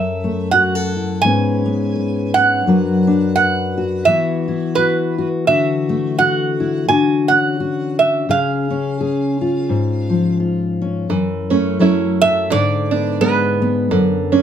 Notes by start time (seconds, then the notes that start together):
Already playing: F#2 A4 E5
0.24 A3
0.51 F#4 F#5
0.75 A4
0.96 E4
1.22 G#2 G#3 B3 G#5
1.26 C#4 B4
1.66 B3
1.96 B4
2.34 C#4 F#5
2.66 F#2 F#3 D4 F#4 B4
3.07 D4
3.36 B4 F#5
3.77 F#4
4.05 E3 B3 E4 F#4 E5
4.48 E4
4.75 F#4 B4
5.18 F#4
5.47 D3 F#4 E5
5.89 A3
6.19 F#4 F#5
6.60 E4
6.88 D3 F#4 G#5
7.28 C#4 F#5
7.60 F#4
7.99 D4 E5
8.29 C#3 G#4 F5
8.70 C#4
9.01 G#4
9.41 F4
9.69 G#2
10.10 F3
10.40 F4
10.81 C#4
11.09 F#2 E3
11.50 A3 C#4
11.79 F#3 A3 C#4 E4
12.22 A4 E5
12.50 G#2 D3 D5
12.91 B3 D4
13.21 G#3 B3 B4
13.62 B3
13.91 F#2 D3
14.32 C#4 D4